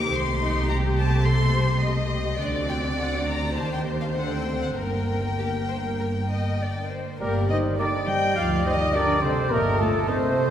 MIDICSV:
0, 0, Header, 1, 11, 480
1, 0, Start_track
1, 0, Key_signature, -2, "minor"
1, 0, Tempo, 573066
1, 96, Time_signature, 4, 2, 24, 8
1, 2496, Tempo, 587084
1, 3456, Tempo, 610376
1, 5856, Tempo, 575816
1, 8604, End_track
2, 0, Start_track
2, 0, Title_t, "Violin section"
2, 0, Program_c, 0, 48
2, 0, Note_on_c, 0, 86, 62
2, 95, Note_off_c, 0, 86, 0
2, 99, Note_on_c, 0, 84, 62
2, 577, Note_off_c, 0, 84, 0
2, 579, Note_on_c, 0, 82, 63
2, 646, Note_off_c, 0, 82, 0
2, 815, Note_on_c, 0, 81, 66
2, 1048, Note_off_c, 0, 81, 0
2, 1058, Note_on_c, 0, 84, 76
2, 1532, Note_off_c, 0, 84, 0
2, 2015, Note_on_c, 0, 74, 53
2, 2082, Note_off_c, 0, 74, 0
2, 2256, Note_on_c, 0, 79, 60
2, 2323, Note_off_c, 0, 79, 0
2, 2500, Note_on_c, 0, 78, 50
2, 2732, Note_off_c, 0, 78, 0
2, 2735, Note_on_c, 0, 82, 56
2, 2971, Note_off_c, 0, 82, 0
2, 2980, Note_on_c, 0, 81, 56
2, 3098, Note_off_c, 0, 81, 0
2, 3100, Note_on_c, 0, 79, 58
2, 3165, Note_off_c, 0, 79, 0
2, 3338, Note_on_c, 0, 77, 44
2, 3386, Note_off_c, 0, 77, 0
2, 3454, Note_on_c, 0, 78, 49
2, 3571, Note_off_c, 0, 78, 0
2, 3573, Note_on_c, 0, 79, 55
2, 3814, Note_off_c, 0, 79, 0
2, 3820, Note_on_c, 0, 78, 46
2, 3868, Note_off_c, 0, 78, 0
2, 3935, Note_on_c, 0, 79, 53
2, 5588, Note_off_c, 0, 79, 0
2, 6340, Note_on_c, 0, 62, 42
2, 6407, Note_off_c, 0, 62, 0
2, 7306, Note_on_c, 0, 62, 42
2, 7373, Note_off_c, 0, 62, 0
2, 8269, Note_on_c, 0, 63, 41
2, 8336, Note_off_c, 0, 63, 0
2, 8604, End_track
3, 0, Start_track
3, 0, Title_t, "Cor anglais"
3, 0, Program_c, 1, 69
3, 5861, Note_on_c, 1, 74, 44
3, 6312, Note_off_c, 1, 74, 0
3, 6346, Note_on_c, 1, 74, 44
3, 7283, Note_off_c, 1, 74, 0
3, 7306, Note_on_c, 1, 74, 50
3, 7775, Note_off_c, 1, 74, 0
3, 7793, Note_on_c, 1, 75, 48
3, 8256, Note_off_c, 1, 75, 0
3, 8267, Note_on_c, 1, 75, 52
3, 8604, Note_off_c, 1, 75, 0
3, 8604, End_track
4, 0, Start_track
4, 0, Title_t, "Trumpet section"
4, 0, Program_c, 2, 61
4, 5859, Note_on_c, 2, 70, 62
4, 5969, Note_off_c, 2, 70, 0
4, 6102, Note_on_c, 2, 75, 55
4, 6211, Note_off_c, 2, 75, 0
4, 6344, Note_on_c, 2, 74, 49
4, 6453, Note_off_c, 2, 74, 0
4, 6586, Note_on_c, 2, 79, 59
4, 6820, Note_off_c, 2, 79, 0
4, 6824, Note_on_c, 2, 77, 60
4, 6931, Note_off_c, 2, 77, 0
4, 7058, Note_on_c, 2, 75, 57
4, 7294, Note_off_c, 2, 75, 0
4, 7299, Note_on_c, 2, 74, 58
4, 7535, Note_off_c, 2, 74, 0
4, 7537, Note_on_c, 2, 72, 62
4, 7779, Note_off_c, 2, 72, 0
4, 7780, Note_on_c, 2, 70, 70
4, 8017, Note_on_c, 2, 69, 61
4, 8020, Note_off_c, 2, 70, 0
4, 8256, Note_on_c, 2, 72, 68
4, 8258, Note_off_c, 2, 69, 0
4, 8604, Note_off_c, 2, 72, 0
4, 8604, End_track
5, 0, Start_track
5, 0, Title_t, "Violin section"
5, 0, Program_c, 3, 48
5, 0, Note_on_c, 3, 70, 56
5, 88, Note_on_c, 3, 72, 56
5, 93, Note_off_c, 3, 70, 0
5, 155, Note_off_c, 3, 72, 0
5, 333, Note_on_c, 3, 63, 55
5, 569, Note_off_c, 3, 63, 0
5, 569, Note_on_c, 3, 67, 51
5, 1049, Note_off_c, 3, 67, 0
5, 1054, Note_on_c, 3, 69, 52
5, 1286, Note_on_c, 3, 72, 55
5, 1291, Note_off_c, 3, 69, 0
5, 1520, Note_on_c, 3, 75, 55
5, 1527, Note_off_c, 3, 72, 0
5, 1997, Note_off_c, 3, 75, 0
5, 2009, Note_on_c, 3, 74, 62
5, 2974, Note_on_c, 3, 72, 55
5, 2975, Note_off_c, 3, 74, 0
5, 3918, Note_off_c, 3, 72, 0
5, 3938, Note_on_c, 3, 70, 43
5, 4379, Note_off_c, 3, 70, 0
5, 4427, Note_on_c, 3, 67, 31
5, 4490, Note_off_c, 3, 67, 0
5, 4668, Note_on_c, 3, 72, 39
5, 4731, Note_off_c, 3, 72, 0
5, 4902, Note_on_c, 3, 70, 31
5, 4965, Note_off_c, 3, 70, 0
5, 5141, Note_on_c, 3, 75, 42
5, 5375, Note_off_c, 3, 75, 0
5, 5381, Note_on_c, 3, 74, 37
5, 5619, Note_on_c, 3, 72, 37
5, 5620, Note_off_c, 3, 74, 0
5, 5849, Note_on_c, 3, 70, 53
5, 5855, Note_off_c, 3, 72, 0
5, 6079, Note_off_c, 3, 70, 0
5, 6091, Note_on_c, 3, 75, 54
5, 6158, Note_off_c, 3, 75, 0
5, 6338, Note_on_c, 3, 74, 45
5, 6577, Note_off_c, 3, 74, 0
5, 6585, Note_on_c, 3, 79, 56
5, 6824, Note_off_c, 3, 79, 0
5, 6830, Note_on_c, 3, 77, 49
5, 7062, Note_on_c, 3, 75, 55
5, 7065, Note_off_c, 3, 77, 0
5, 7296, Note_off_c, 3, 75, 0
5, 7308, Note_on_c, 3, 74, 51
5, 7544, Note_off_c, 3, 74, 0
5, 7547, Note_on_c, 3, 72, 48
5, 7784, Note_off_c, 3, 72, 0
5, 7789, Note_on_c, 3, 70, 56
5, 8025, Note_off_c, 3, 70, 0
5, 8028, Note_on_c, 3, 69, 56
5, 8263, Note_off_c, 3, 69, 0
5, 8267, Note_on_c, 3, 72, 65
5, 8604, Note_off_c, 3, 72, 0
5, 8604, End_track
6, 0, Start_track
6, 0, Title_t, "Flute"
6, 0, Program_c, 4, 73
6, 5867, Note_on_c, 4, 67, 53
6, 6089, Note_off_c, 4, 67, 0
6, 6104, Note_on_c, 4, 72, 46
6, 6331, Note_off_c, 4, 72, 0
6, 6336, Note_on_c, 4, 70, 47
6, 6391, Note_off_c, 4, 70, 0
6, 6575, Note_on_c, 4, 75, 53
6, 6815, Note_off_c, 4, 75, 0
6, 6818, Note_on_c, 4, 74, 60
6, 7054, Note_off_c, 4, 74, 0
6, 7070, Note_on_c, 4, 72, 46
6, 7123, Note_off_c, 4, 72, 0
6, 7302, Note_on_c, 4, 70, 55
6, 7537, Note_off_c, 4, 70, 0
6, 7543, Note_on_c, 4, 69, 51
6, 7774, Note_off_c, 4, 69, 0
6, 7779, Note_on_c, 4, 67, 54
6, 8004, Note_off_c, 4, 67, 0
6, 8009, Note_on_c, 4, 65, 50
6, 8239, Note_off_c, 4, 65, 0
6, 8244, Note_on_c, 4, 69, 61
6, 8604, Note_off_c, 4, 69, 0
6, 8604, End_track
7, 0, Start_track
7, 0, Title_t, "French horn section"
7, 0, Program_c, 5, 60
7, 5854, Note_on_c, 5, 58, 50
7, 6082, Note_off_c, 5, 58, 0
7, 6102, Note_on_c, 5, 63, 47
7, 6344, Note_off_c, 5, 63, 0
7, 6361, Note_on_c, 5, 62, 41
7, 6465, Note_off_c, 5, 62, 0
7, 6583, Note_on_c, 5, 67, 56
7, 6819, Note_off_c, 5, 67, 0
7, 6836, Note_on_c, 5, 65, 52
7, 7068, Note_off_c, 5, 65, 0
7, 7075, Note_on_c, 5, 63, 52
7, 7303, Note_off_c, 5, 63, 0
7, 7315, Note_on_c, 5, 62, 59
7, 7538, Note_on_c, 5, 60, 47
7, 7548, Note_off_c, 5, 62, 0
7, 7775, Note_off_c, 5, 60, 0
7, 7777, Note_on_c, 5, 58, 55
7, 8019, Note_off_c, 5, 58, 0
7, 8019, Note_on_c, 5, 57, 50
7, 8127, Note_off_c, 5, 57, 0
7, 8261, Note_on_c, 5, 60, 71
7, 8604, Note_off_c, 5, 60, 0
7, 8604, End_track
8, 0, Start_track
8, 0, Title_t, "Viola section"
8, 0, Program_c, 6, 48
8, 0, Note_on_c, 6, 67, 57
8, 94, Note_on_c, 6, 57, 50
8, 1976, Note_off_c, 6, 57, 0
8, 1977, Note_off_c, 6, 67, 0
8, 2012, Note_on_c, 6, 60, 43
8, 2012, Note_on_c, 6, 66, 45
8, 2944, Note_off_c, 6, 60, 0
8, 2944, Note_off_c, 6, 66, 0
8, 2974, Note_on_c, 6, 58, 40
8, 2977, Note_on_c, 6, 67, 41
8, 3423, Note_off_c, 6, 58, 0
8, 3424, Note_off_c, 6, 67, 0
8, 3460, Note_on_c, 6, 60, 39
8, 3462, Note_on_c, 6, 69, 37
8, 3907, Note_off_c, 6, 60, 0
8, 3908, Note_off_c, 6, 69, 0
8, 3942, Note_on_c, 6, 70, 39
8, 3943, Note_on_c, 6, 58, 37
8, 5665, Note_off_c, 6, 70, 0
8, 5666, Note_off_c, 6, 58, 0
8, 6345, Note_on_c, 6, 55, 43
8, 6346, Note_on_c, 6, 62, 44
8, 6411, Note_off_c, 6, 55, 0
8, 6412, Note_off_c, 6, 62, 0
8, 7290, Note_on_c, 6, 55, 42
8, 7290, Note_on_c, 6, 62, 44
8, 7357, Note_off_c, 6, 55, 0
8, 7357, Note_off_c, 6, 62, 0
8, 8256, Note_on_c, 6, 57, 46
8, 8258, Note_on_c, 6, 60, 49
8, 8323, Note_off_c, 6, 57, 0
8, 8325, Note_off_c, 6, 60, 0
8, 8604, End_track
9, 0, Start_track
9, 0, Title_t, "Bassoon"
9, 0, Program_c, 7, 70
9, 5857, Note_on_c, 7, 55, 50
9, 6310, Note_off_c, 7, 55, 0
9, 6350, Note_on_c, 7, 55, 50
9, 7285, Note_off_c, 7, 55, 0
9, 7304, Note_on_c, 7, 55, 58
9, 7789, Note_on_c, 7, 57, 50
9, 7802, Note_off_c, 7, 55, 0
9, 8257, Note_off_c, 7, 57, 0
9, 8262, Note_on_c, 7, 57, 54
9, 8604, Note_off_c, 7, 57, 0
9, 8604, End_track
10, 0, Start_track
10, 0, Title_t, "Cello section"
10, 0, Program_c, 8, 48
10, 94, Note_on_c, 8, 48, 56
10, 2010, Note_off_c, 8, 48, 0
10, 2014, Note_on_c, 8, 50, 53
10, 2958, Note_off_c, 8, 50, 0
10, 2975, Note_on_c, 8, 51, 44
10, 3456, Note_off_c, 8, 51, 0
10, 3458, Note_on_c, 8, 50, 38
10, 3938, Note_off_c, 8, 50, 0
10, 3938, Note_on_c, 8, 43, 42
10, 5663, Note_off_c, 8, 43, 0
10, 5858, Note_on_c, 8, 46, 55
10, 6084, Note_off_c, 8, 46, 0
10, 6102, Note_on_c, 8, 51, 54
10, 6344, Note_off_c, 8, 51, 0
10, 6344, Note_on_c, 8, 50, 46
10, 6583, Note_on_c, 8, 55, 53
10, 6585, Note_off_c, 8, 50, 0
10, 6823, Note_off_c, 8, 55, 0
10, 6828, Note_on_c, 8, 53, 52
10, 7059, Note_off_c, 8, 53, 0
10, 7060, Note_on_c, 8, 51, 53
10, 7295, Note_off_c, 8, 51, 0
10, 7296, Note_on_c, 8, 50, 54
10, 7534, Note_off_c, 8, 50, 0
10, 7537, Note_on_c, 8, 48, 47
10, 7777, Note_on_c, 8, 46, 59
10, 7779, Note_off_c, 8, 48, 0
10, 7844, Note_off_c, 8, 46, 0
10, 8022, Note_on_c, 8, 45, 58
10, 8089, Note_off_c, 8, 45, 0
10, 8264, Note_on_c, 8, 48, 58
10, 8604, Note_off_c, 8, 48, 0
10, 8604, End_track
11, 0, Start_track
11, 0, Title_t, "Double bass section"
11, 0, Program_c, 10, 48
11, 89, Note_on_c, 10, 36, 54
11, 2007, Note_off_c, 10, 36, 0
11, 2007, Note_on_c, 10, 38, 47
11, 2955, Note_off_c, 10, 38, 0
11, 2971, Note_on_c, 10, 39, 40
11, 3453, Note_on_c, 10, 38, 41
11, 3454, Note_off_c, 10, 39, 0
11, 3935, Note_off_c, 10, 38, 0
11, 3939, Note_on_c, 10, 31, 36
11, 5663, Note_off_c, 10, 31, 0
11, 5858, Note_on_c, 10, 31, 50
11, 6263, Note_off_c, 10, 31, 0
11, 6828, Note_on_c, 10, 38, 46
11, 7223, Note_off_c, 10, 38, 0
11, 7782, Note_on_c, 10, 31, 49
11, 8180, Note_off_c, 10, 31, 0
11, 8604, End_track
0, 0, End_of_file